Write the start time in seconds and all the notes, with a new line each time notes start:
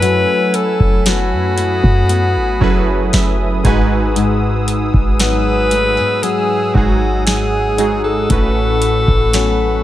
Already playing: F#2 F#3 A3 C#4 E4 A4 B4 G#5 B5 E6
0.02 F#3, closed hi-hat
0.54 A4, closed hi-hat
0.80 F#1, kick
1.06 B3 E4 F#4 A4, snare, closed hi-hat
1.32 F#2
1.58 E4 D#6, closed hi-hat
1.83 F#2, kick
2.09 B3, closed hi-hat
2.36 G#1
2.60 F#1 F#3 C#4 E4 G#4 A4 B4, kick
3.13 F#1 E5, snare, closed hi-hat
3.64 G#1 G#2 G#3 D#4 F#4 G#4 B4 F#5 G#5 E6, kick, closed hi-hat
4.16 G#2, closed hi-hat
4.68 closed hi-hat
4.94 G#1, kick
5.20 F#3 B3 D#4 B4, snare, closed hi-hat
5.71 A3, closed hi-hat
5.97 G#2 B3
6.23 F#3 G#4, closed hi-hat
6.74 G#1 G#2 G#3 D#4 F#4 G#4, kick
7.26 G#4, snare, closed hi-hat
7.78 G#2 G#3 D#4 F#4 G#4, closed hi-hat
8.04 A4
8.29 A1 A2 A3 C#4 F#4 B4 B5 C#6, kick, closed hi-hat
8.82 closed hi-hat
9.08 A1, kick
9.33 F#3 B3 C#4, snare, closed hi-hat